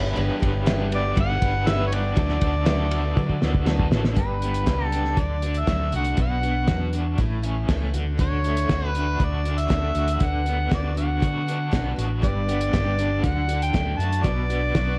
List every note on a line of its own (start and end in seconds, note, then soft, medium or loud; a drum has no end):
0.00 0.16 G1 medium
0.00 0.15 E3 soft
0.00 0.15 G3 medium
0.00 0.16 B3 medium
0.00 0.18 D4 medium
0.00 0.16 G4 medium
0.00 0.56 G4 medium
0.00 0.18 B4 loud
0.00 0.56 B4 medium
0.00 0.56 E5 loud
0.16 0.29 G1 loud
0.16 0.41 G2 medium
0.16 0.41 D3 medium
0.16 0.41 E3 medium
0.16 0.40 G3 medium
0.16 0.39 B3 medium
0.16 0.68 D4 medium
0.16 0.38 G4 medium
0.16 0.69 B4 loud
0.40 1.13 G1 loud
0.40 0.65 E3 medium
0.40 0.66 G3 medium
0.40 0.65 B3 medium
0.40 0.66 G4 medium
0.40 kick medium
0.40 ride medium
0.66 0.92 G2 medium
0.66 0.92 D3 medium
0.66 0.92 E3 loud
0.66 0.91 G3 medium
0.66 0.90 B3 medium
0.66 1.43 D4 medium
0.66 1.09 G4 medium
0.66 0.90 G4 loud
0.66 1.10 B4 medium
0.66 1.10 E5 loud
0.66 snare loud
0.66 ride loud
0.70 1.41 B4 loud
0.91 1.14 E3 soft
0.91 1.15 G3 soft
0.91 1.16 B3 medium
0.91 1.16 G4 medium
0.91 1.17 D5 medium
0.91 ride medium
1.15 1.40 G1 loud
1.15 1.41 E3 medium
1.15 1.41 G3 medium
1.15 1.41 B3 medium
1.15 1.60 G4 medium
1.15 1.41 G4 medium
1.15 1.60 B4 medium
1.15 1.60 E5 medium
1.15 kick loud
1.15 ride medium
1.20 1.70 F#5 loud
1.42 2.13 G1 medium
1.42 1.67 E3 soft
1.42 1.67 G3 soft
1.42 1.67 B3 medium
1.42 1.65 D4 medium
1.42 1.67 G4 medium
1.42 1.67 B4 medium
1.42 kick medium
1.42 ride medium
1.66 1.92 G2 medium
1.66 1.92 D3 medium
1.66 1.93 E3 medium
1.66 1.92 G3 medium
1.66 1.92 B3 medium
1.66 1.93 D4 medium
1.66 2.10 G4 medium
1.66 1.90 G4 medium
1.66 2.10 B4 medium
1.66 1.92 B4 medium
1.66 2.10 E5 medium
1.66 1.86 E5 medium
1.66 snare loud
1.66 ride medium
1.87 1.95 C#5 medium
1.92 2.15 E3 soft
1.92 2.16 G3 soft
1.92 2.16 B3 medium
1.92 2.17 D4 medium
1.92 2.17 G4 medium
1.92 2.19 B4 medium
1.92 3.68 D5 medium
1.92 ride medium
2.16 2.40 D2 loud
2.16 2.41 D3 medium
2.16 2.41 F#3 medium
2.16 2.41 A3 medium
2.16 2.41 B3 medium
2.16 2.66 D4 medium
2.16 2.60 F#4 medium
2.16 2.39 F#4 medium
2.16 2.67 A4 loud
2.16 2.60 B4 medium
2.16 2.60 D5 medium
2.16 kick loud
2.16 ride loud
2.29 snare soft
2.41 3.13 D2 medium
2.41 2.65 A3 soft
2.41 2.66 B3 soft
2.41 2.66 F#4 medium
2.41 kick medium
2.41 ride medium
2.65 2.91 D3 medium
2.65 2.91 F#3 loud
2.65 2.91 A3 loud
2.65 2.90 B3 loud
2.65 3.41 D4 medium
2.65 3.09 F#4 medium
2.65 2.90 F#4 loud
2.65 3.40 A4 loud
2.65 3.09 B4 medium
2.65 3.10 E5 loud
2.65 snare loud
2.65 ride loud
2.91 3.16 A3 medium
2.91 3.17 B3 medium
2.91 3.16 F#4 medium
2.91 ride medium
3.16 3.40 D3 loud
3.16 3.42 F#3 medium
3.16 3.42 A3 medium
3.16 3.42 B3 medium
3.16 3.60 F#4 medium
3.16 3.40 F#4 medium
3.16 3.60 B4 medium
3.16 3.60 D5 medium
3.16 kick loud
3.30 kick medium
3.41 3.89 D2 medium
3.41 3.65 A3 soft
3.41 3.66 B3 medium
3.41 3.65 D4 medium
3.41 3.66 F#4 medium
3.41 3.66 A4 medium
3.41 snare medium
3.55 kick medium
3.65 3.92 D3 medium
3.65 3.92 F#3 medium
3.65 3.92 A3 medium
3.65 3.91 B3 loud
3.65 3.92 D4 medium
3.65 4.09 F#4 medium
3.65 3.90 F#4 loud
3.65 3.90 A4 medium
3.65 4.10 B4 medium
3.65 4.10 D5 medium
3.65 snare medium
3.80 kick medium
3.91 4.15 A1 medium
3.91 4.15 A3 medium
3.91 4.14 B3 medium
3.91 4.16 D4 medium
3.91 4.16 F#4 medium
3.91 4.15 A4 medium
3.91 snare loud
4.04 snare medium
4.15 4.64 G1 medium
4.15 4.41 G2 medium
4.15 4.41 D3 medium
4.15 4.42 G3 medium
4.15 4.42 B3 medium
4.15 4.42 D4 medium
4.15 4.41 G4 medium
4.15 4.86 B4 medium
4.15 kick loud
4.15 closed hi-hat medium
4.42 4.65 G3 soft
4.42 4.65 B3 soft
4.42 4.66 D4 soft
4.42 4.67 G4 soft
4.42 closed hi-hat medium
4.54 closed hi-hat medium
4.66 5.14 C#2 medium
4.66 4.92 G2 medium
4.66 4.92 D3 medium
4.66 4.92 G3 medium
4.66 4.92 B3 medium
4.66 4.93 D4 medium
4.66 4.91 G4 medium
4.66 kick loud
4.66 snare loud
4.66 closed hi-hat medium
4.86 5.21 A4 medium
4.92 5.16 G3 soft
4.92 5.16 B3 soft
4.92 5.17 D4 medium
4.92 5.18 G4 medium
4.92 closed hi-hat medium
5.05 snare soft
5.16 5.64 D2 medium
5.16 6.17 D3 medium
5.16 5.42 F#3 medium
5.16 5.42 A3 medium
5.16 5.43 D4 medium
5.16 5.41 F#4 medium
5.16 5.61 D5 medium
5.16 kick medium
5.16 closed hi-hat medium
5.42 5.67 A3 soft
5.42 5.67 D4 soft
5.42 5.67 F#4 soft
5.42 closed hi-hat medium
5.54 closed hi-hat medium
5.59 5.95 E5 medium
5.67 5.91 D2 medium
5.67 5.93 D3 medium
5.67 5.93 F#3 medium
5.67 5.93 A3 medium
5.67 5.93 D4 medium
5.67 5.92 F#4 medium
5.67 kick loud
5.67 snare loud
5.67 closed hi-hat medium
5.92 6.16 C2 medium
5.92 6.18 A3 soft
5.92 6.17 D4 soft
5.92 6.17 F#4 medium
5.92 6.18 F#5 loud
5.92 closed hi-hat medium
6.05 closed hi-hat medium
6.17 6.65 B1 medium
6.17 6.43 B2 medium
6.17 6.43 F#3 medium
6.17 6.42 B3 medium
6.17 6.42 D4 medium
6.17 6.40 F#4 medium
6.17 kick loud
6.17 closed hi-hat medium
6.21 6.91 F#5 loud
6.41 6.67 B3 soft
6.41 6.67 D4 soft
6.41 6.67 F#4 soft
6.41 closed hi-hat medium
6.68 7.15 E2 medium
6.68 6.94 B2 medium
6.68 6.94 F#3 medium
6.68 6.93 B3 medium
6.68 6.93 D4 medium
6.68 6.92 F#4 medium
6.68 kick loud
6.68 snare loud
6.68 closed hi-hat medium
6.93 7.19 B3 soft
6.93 7.19 D4 medium
6.93 7.18 F#4 medium
6.93 closed hi-hat medium
7.18 7.66 A1 medium
7.18 7.95 A2 medium
7.18 7.44 E3 medium
7.18 7.44 A3 medium
7.18 7.43 C#4 medium
7.18 7.41 E4 medium
7.18 kick medium
7.18 closed hi-hat medium
7.42 7.69 A3 soft
7.42 7.69 C#4 medium
7.42 7.68 E4 medium
7.42 closed hi-hat medium
7.69 7.93 C#2 medium
7.69 7.94 A2 medium
7.69 7.95 E3 medium
7.69 7.95 A3 medium
7.69 7.94 C#4 medium
7.69 7.93 E4 medium
7.69 kick loud
7.69 snare loud
7.69 closed hi-hat medium
7.94 8.66 D2 medium
7.94 8.20 D3 medium
7.94 8.18 A3 soft
7.94 8.18 D4 medium
7.94 8.18 F#4 medium
7.94 closed hi-hat medium
8.18 8.44 D3 medium
8.18 8.44 A3 medium
8.18 8.44 D4 medium
8.18 8.43 F#4 medium
8.18 8.87 C#5 medium
8.18 kick loud
8.18 closed hi-hat medium
8.44 8.70 A3 soft
8.44 8.70 D4 soft
8.44 8.70 F#4 soft
8.44 closed hi-hat medium
8.57 closed hi-hat medium
8.69 9.17 D2 medium
8.69 8.95 D3 medium
8.69 8.96 A3 medium
8.69 8.95 D4 medium
8.69 8.93 F#4 medium
8.69 kick loud
8.69 snare loud
8.69 closed hi-hat medium
8.87 9.25 B4 medium
8.94 9.19 A3 soft
8.94 9.20 D4 medium
8.94 9.20 F#4 medium
8.94 closed hi-hat medium
9.19 9.67 D2 loud
9.19 9.45 D3 medium
9.19 9.45 A3 medium
9.19 9.44 D4 medium
9.19 9.42 F#4 medium
9.19 kick loud
9.19 closed hi-hat medium
9.23 9.61 D5 medium
9.44 9.68 A3 soft
9.44 9.68 D4 soft
9.44 9.69 F#4 soft
9.44 closed hi-hat medium
9.58 10.14 E5 loud
9.58 closed hi-hat medium
9.68 9.94 D2 medium
9.68 9.95 D3 medium
9.68 9.95 A3 medium
9.68 9.94 D4 medium
9.68 9.93 F#4 medium
9.68 kick loud
9.68 snare loud
9.68 closed hi-hat medium
9.94 10.19 D2 medium
9.94 10.19 A3 soft
9.94 10.20 D4 soft
9.94 10.19 F#4 medium
9.94 closed hi-hat medium
10.08 closed hi-hat medium
10.14 10.25 E5 medium
10.19 10.68 D2 medium
10.19 10.45 D3 medium
10.19 10.45 B3 medium
10.19 10.45 D4 medium
10.19 10.42 F#4 medium
10.19 kick loud
10.19 closed hi-hat medium
10.23 10.73 F#5 loud
10.43 10.69 B3 soft
10.43 10.70 D4 soft
10.43 10.70 F#4 soft
10.43 closed hi-hat medium
10.69 11.19 D2 medium
10.69 10.96 D3 medium
10.69 10.95 B3 medium
10.69 10.95 D4 medium
10.69 10.93 F#4 medium
10.69 kick loud
10.69 snare loud
10.69 closed hi-hat medium
10.75 10.97 D5 medium
10.94 11.20 B3 soft
10.94 11.20 D4 soft
10.94 11.21 F#4 medium
10.94 11.94 F#5 medium
10.94 closed hi-hat medium
11.20 11.46 D3 medium
11.20 11.69 D3 medium
11.20 11.47 B3 medium
11.20 11.46 D4 medium
11.20 11.46 F#4 medium
11.20 kick medium
11.20 closed hi-hat medium
11.47 11.71 B3 soft
11.47 11.71 D4 soft
11.47 11.72 F#4 soft
11.47 closed hi-hat medium
11.71 11.95 B1 medium
11.71 11.97 D3 medium
11.71 11.97 B3 medium
11.71 11.97 D4 medium
11.71 11.95 F#4 medium
11.71 kick loud
11.71 snare loud
11.71 closed hi-hat medium
11.96 12.21 A1 medium
11.96 12.22 B3 soft
11.96 12.22 D4 medium
11.96 12.22 F#4 medium
11.96 closed hi-hat medium
12.22 12.70 G1 medium
12.22 12.48 G2 medium
12.22 12.48 D3 medium
12.22 12.48 G3 medium
12.22 12.48 B3 medium
12.22 12.48 D4 medium
12.22 12.66 G4 medium
12.22 12.47 G4 medium
12.22 12.66 B4 medium
12.22 12.66 D5 medium
12.22 13.26 D5 loud
12.22 kick loud
12.22 closed hi-hat medium
12.48 12.72 G3 soft
12.48 12.72 B3 soft
12.48 12.72 D4 soft
12.48 12.72 G4 medium
12.48 closed hi-hat medium
12.61 closed hi-hat medium
12.72 13.21 G1 medium
12.72 12.98 G2 medium
12.72 12.99 D3 medium
12.72 12.98 G3 medium
12.72 12.97 B3 medium
12.72 12.97 D4 medium
12.72 13.16 G4 medium
12.72 12.97 G4 medium
12.72 13.16 B4 medium
12.72 13.16 D5 medium
12.72 kick loud
12.72 snare loud
12.72 closed hi-hat medium
12.98 13.23 G3 soft
12.98 13.23 B3 medium
12.98 13.24 D4 medium
12.98 13.23 G4 medium
12.98 closed hi-hat medium
13.23 13.70 D2 medium
13.23 14.24 D3 medium
13.23 13.49 F#3 medium
13.23 13.48 A3 medium
13.23 13.47 D4 medium
13.23 13.45 F#4 medium
13.23 13.46 F#4 medium
13.23 13.45 A4 medium
13.23 13.45 D5 medium
13.23 13.62 F#5 medium
13.23 kick loud
13.23 closed hi-hat medium
13.47 13.73 A3 soft
13.47 13.73 D4 soft
13.47 13.70 F#4 medium
13.47 13.73 F#4 soft
13.47 13.70 A4 medium
13.47 13.70 D5 medium
13.47 closed hi-hat medium
13.62 14.00 G5 loud
13.62 closed hi-hat medium
13.73 13.98 D2 medium
13.73 13.99 D3 medium
13.73 13.99 F#3 medium
13.73 13.99 A3 medium
13.73 13.99 D4 medium
13.73 14.17 F#4 medium
13.73 13.98 F#4 medium
13.73 14.17 A4 medium
13.73 14.17 D5 medium
13.73 kick loud
13.73 snare loud
13.73 closed hi-hat medium
13.98 14.22 F#2 medium
13.98 14.23 A3 soft
13.98 14.23 D4 medium
13.98 14.24 F#4 soft
13.98 14.25 A5 medium
13.98 closed hi-hat medium
14.12 closed hi-hat medium
14.23 14.71 B1 medium
14.23 14.49 B2 medium
14.23 14.49 F#3 medium
14.23 14.49 B3 medium
14.23 14.50 D4 medium
14.23 14.67 F#4 medium
14.23 14.48 F#4 medium
14.23 14.68 B4 medium
14.23 14.99 D5 loud
14.23 14.68 D5 medium
14.23 kick loud
14.23 closed hi-hat medium
14.49 14.75 B3 soft
14.49 14.75 D4 soft
14.49 14.75 F#4 medium
14.49 closed hi-hat medium
14.74 14.99 B1 medium
14.74 14.99 B2 medium
14.74 14.99 F#3 medium
14.74 14.99 B3 medium
14.74 14.99 D4 medium
14.74 14.99 F#4 medium
14.74 14.99 B4 medium
14.74 14.99 D5 medium
14.74 kick loud
14.74 snare loud
14.74 closed hi-hat medium